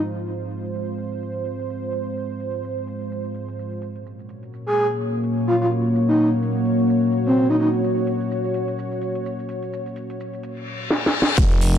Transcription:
0.00 3.78 G#3 medium
0.00 3.78 F4 medium
0.00 3.78 C5 medium
0.00 closed hi-hat medium
0.18 closed hi-hat soft
0.28 shaker medium
0.41 closed hi-hat soft
0.41 shaker soft
0.51 closed hi-hat medium
0.51 shaker soft
0.65 closed hi-hat soft
0.65 shaker soft
0.75 shaker medium
0.88 closed hi-hat soft
0.88 shaker soft
0.98 closed hi-hat medium
0.98 shaker soft
1.12 closed hi-hat soft
1.12 shaker soft
1.23 shaker medium
1.36 closed hi-hat soft
1.36 shaker soft
1.46 closed hi-hat medium
1.46 shaker soft
1.59 closed hi-hat soft
1.70 shaker medium
1.83 closed hi-hat soft
1.83 shaker soft
1.93 closed hi-hat medium
1.93 shaker soft
2.07 closed hi-hat soft
2.17 shaker medium
2.30 closed hi-hat soft
2.30 shaker soft
2.40 closed hi-hat medium
2.40 shaker soft
2.54 closed hi-hat soft
2.54 shaker soft
2.64 shaker medium
2.77 closed hi-hat soft
2.77 shaker soft
2.87 closed hi-hat medium
2.87 shaker soft
3.01 closed hi-hat soft
3.01 shaker soft
3.12 shaker medium
3.25 closed hi-hat soft
3.25 shaker soft
3.35 closed hi-hat medium
3.35 shaker soft
3.48 closed hi-hat soft
3.48 shaker soft
3.59 shaker medium
3.72 closed hi-hat soft
3.72 shaker soft
3.82 10.87 A#3 medium
3.82 10.87 F#4 medium
3.82 10.87 C#5 medium
3.82 closed hi-hat medium
3.82 shaker soft
3.96 closed hi-hat soft
4.06 shaker medium
4.19 closed hi-hat soft
4.19 shaker soft
4.29 closed hi-hat medium
4.29 shaker soft
4.43 closed hi-hat soft
4.43 shaker soft
4.53 shaker medium
4.67 4.87 G#4 medium
4.67 closed hi-hat soft
4.67 shaker soft
4.76 closed hi-hat medium
4.90 closed hi-hat soft
4.90 shaker soft
5.01 shaker medium
5.14 closed hi-hat soft
5.14 shaker soft
5.24 closed hi-hat medium
5.24 shaker soft
5.37 closed hi-hat soft
5.47 5.56 F4 medium
5.47 shaker medium
5.61 5.67 F4 medium
5.61 closed hi-hat soft
5.71 closed hi-hat medium
5.71 shaker soft
5.85 closed hi-hat soft
5.95 shaker medium
6.08 6.29 D#4 medium
6.08 closed hi-hat soft
6.08 shaker soft
6.18 closed hi-hat medium
6.18 shaker soft
6.32 closed hi-hat soft
6.32 shaker soft
6.42 shaker medium
6.55 closed hi-hat soft
6.55 shaker soft
6.65 closed hi-hat medium
6.65 shaker soft
6.79 closed hi-hat soft
6.79 shaker soft
6.90 shaker medium
7.03 closed hi-hat soft
7.03 shaker soft
7.13 closed hi-hat medium
7.13 shaker soft
7.26 7.47 C4 medium
7.26 closed hi-hat soft
7.26 shaker soft
7.37 shaker medium
7.50 7.56 D#4 medium
7.50 closed hi-hat soft
7.50 shaker soft
7.60 7.69 D#4 medium
7.60 closed hi-hat medium
7.60 shaker soft
7.74 closed hi-hat soft
7.84 shaker medium
7.97 closed hi-hat soft
7.97 shaker soft
8.07 closed hi-hat medium
8.07 shaker soft
8.21 closed hi-hat soft
8.21 shaker soft
8.31 shaker medium
8.44 closed hi-hat soft
8.44 shaker soft
8.54 closed hi-hat medium
8.54 shaker soft
8.68 closed hi-hat soft
8.68 shaker soft
8.79 shaker medium
8.92 closed hi-hat soft
8.92 shaker soft
9.02 closed hi-hat medium
9.02 shaker soft
9.15 closed hi-hat soft
9.26 shaker medium
9.39 closed hi-hat soft
9.39 shaker soft
9.49 closed hi-hat medium
9.49 shaker soft
9.63 closed hi-hat medium
9.63 shaker soft
9.73 shaker medium
9.86 closed hi-hat soft
9.86 shaker soft
9.96 closed hi-hat medium
9.96 shaker soft
10.10 closed hi-hat medium
10.10 shaker soft
10.20 shaker medium
10.33 closed hi-hat soft
10.33 shaker soft
10.43 closed hi-hat medium
10.43 reverse cymbal medium
10.43 shaker soft
10.57 closed hi-hat soft
10.57 shaker soft
10.68 shaker medium
10.81 closed hi-hat soft
10.81 shaker soft
10.91 snare medium
11.06 snare medium
11.22 snare medium
11.38 11.78 F1 medium
11.38 11.78 G#3 medium
11.38 11.78 F4 medium
11.38 11.78 C5 medium
11.38 kick loud
11.38 closed hi-hat medium
11.38 crash loud
11.38 tambourine medium
11.38 downlifter medium
11.38 shaker soft
11.52 closed hi-hat soft
11.61 open hi-hat loud
11.61 tambourine medium
11.61 shaker medium
11.75 closed hi-hat medium

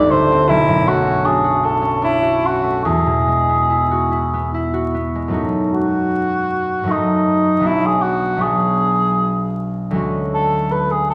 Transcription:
0.00 0.53 G1 medium
0.00 0.53 D2 soft
0.00 0.31 C4 medium
0.00 0.54 F4 medium
0.00 0.12 D5 loud
0.11 0.86 A3 soft
0.11 0.50 C5 medium
0.32 0.53 C4 medium
0.49 2.89 B1 medium
0.49 0.90 E4 medium
0.68 2.89 F#2 medium
0.87 2.62 A3 medium
0.87 1.27 F#4 medium
1.06 1.81 C#4 medium
1.25 1.62 D4 medium
1.25 1.67 G#4 medium
1.44 2.21 F#4 soft
1.63 2.01 D4 soft
1.63 2.04 A4 medium
1.82 2.41 C#4 medium
2.02 2.89 D4 medium
2.02 2.47 E4 medium
2.22 3.90 F#4 soft
2.43 2.89 C#4 soft
2.43 2.85 F#4 medium
2.64 2.89 A3 soft
2.85 5.37 E2 medium
2.85 4.50 G#4 medium
3.06 5.37 B2 soft
3.28 5.14 G#3 soft
3.49 4.33 B3 soft
3.70 4.10 E4 soft
3.91 4.72 F#4 soft
4.12 4.53 E4 soft
4.34 4.93 B3 soft
4.54 5.38 E4 medium
4.74 5.32 F#4 soft
4.94 5.38 B3 soft
5.15 5.38 G#3 soft
5.28 6.82 F#2 soft
5.28 6.84 F#3 soft
5.28 6.85 A3 soft
5.32 6.86 D#4 soft
5.32 6.88 F#4 soft
5.74 6.93 F#4 medium
6.83 7.65 F#2 soft
6.83 7.59 F#3 soft
6.83 7.67 A3 soft
6.83 7.67 D#4 soft
6.89 7.68 D#4 medium
6.89 7.64 F#4 soft
7.60 8.36 B1 soft
7.60 8.36 F#3 soft
7.60 8.38 B3 soft
7.60 8.39 D4 soft
7.65 7.88 E4 medium
7.65 8.40 F#4 soft
7.86 8.03 G#4 medium
8.02 8.43 F#4 medium
8.37 9.97 B1 soft
8.37 9.90 F#3 soft
8.37 9.98 B3 soft
8.37 11.14 D4 soft
8.42 9.94 F#4 soft
8.42 9.58 G#4 medium
9.90 11.14 D2 soft
9.90 11.14 F#3 soft
9.90 11.14 G#3 soft
9.90 11.14 C#4 soft
9.95 11.14 F#4 soft
10.34 10.73 A4 medium
10.72 10.93 B4 medium
10.91 11.09 G#4 medium
11.10 11.14 A4 medium

